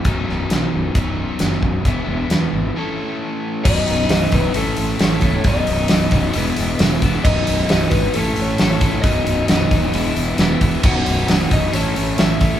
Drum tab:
CC |----------------|----------------|x---------------|----------------|
HH |x---x---x---x---|x---x-----------|--o-o-o-o-o-o-o-|o-o-o-o-o-o-o-o-|
SD |--o-o-------oo--|----o-----------|---oo-------o---|----o-------o---|
BD |o-------o-----o-|o---------------|o-----o-------o-|o-----o-------o-|

CC |x---------------|----------------|x---------------|
HH |--o-o-o-o-o-o-o-|o-o-o-o-o-o-o-o-|--o-o-o-o-o-o-o-|
SD |---oo-------o---|----o-------o---|----o-------o---|
BD |o-----o-------o-|o-----o-------o-|o-----o-------o-|